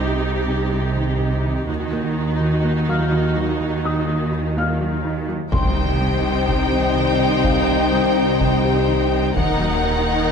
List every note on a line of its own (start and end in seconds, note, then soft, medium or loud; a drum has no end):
0.00 1.64 C2 medium
0.00 1.64 C3 medium
0.00 0.15 G3 medium
0.00 1.64 D#4 medium
0.00 1.64 G4 medium
0.48 0.63 C3 medium
0.72 0.87 G3 medium
0.97 1.11 D#3 medium
1.21 1.35 C3 medium
1.45 1.59 D#3 medium
1.69 5.28 D#2 medium
1.69 5.29 D#3 medium
1.69 1.83 D#3 medium
1.69 5.29 D#4 medium
1.69 5.29 F#4 medium
1.93 2.07 A#3 medium
2.41 2.55 D#3 medium
2.65 2.79 A#3 soft
2.89 3.03 F#3 medium
2.89 4.29 F5 soft
2.89 4.29 F6 soft
3.13 3.27 D#3 medium
3.37 3.51 F#3 medium
3.61 3.75 D#3 medium
3.85 3.99 A#3 soft
3.85 5.25 D#6 soft
4.33 4.47 D#3 medium
4.57 4.71 A#3 soft
4.57 5.49 F5 soft
4.57 5.49 F6 soft
4.81 4.95 F#3 medium
5.05 5.19 D#3 medium
5.29 5.43 F#3 medium
5.52 9.38 C2 medium
5.52 9.33 C2 soft
5.52 9.32 C3 medium
5.52 5.67 C3 medium
5.52 9.32 D#3 medium
5.52 9.32 G3 medium
5.52 9.33 C4 medium
5.52 9.32 D#4 medium
5.52 9.33 D#4 medium
5.52 9.32 C5 medium
5.52 9.32 G5 medium
5.52 6.92 C6 soft
5.52 taiko medium
5.52 impact medium
5.76 5.91 D#3 medium
6.01 6.15 G3 medium
6.48 6.63 C3 medium
6.48 taiko medium
6.72 6.87 D#3 medium
6.96 7.11 D#3 medium
7.45 7.59 C3 medium
7.45 8.85 F5 soft
7.45 taiko medium
7.69 7.83 D#3 medium
7.93 8.07 G3 medium
8.41 8.55 C3 medium
8.41 taiko medium
8.64 8.79 D#3 medium
8.64 10.05 G4 soft
8.89 9.03 D#3 medium
9.36 10.32 D#1 medium
9.36 10.32 D#2 medium
9.36 10.32 D#3 medium
9.36 9.51 D#3 medium
9.36 10.32 D#3 medium
9.36 10.32 A#3 medium
9.36 10.32 D#4 medium
9.36 10.32 A#4 medium
9.36 10.32 F#5 medium
9.36 taiko medium
9.61 9.75 F#3 medium
9.85 9.99 A#3 medium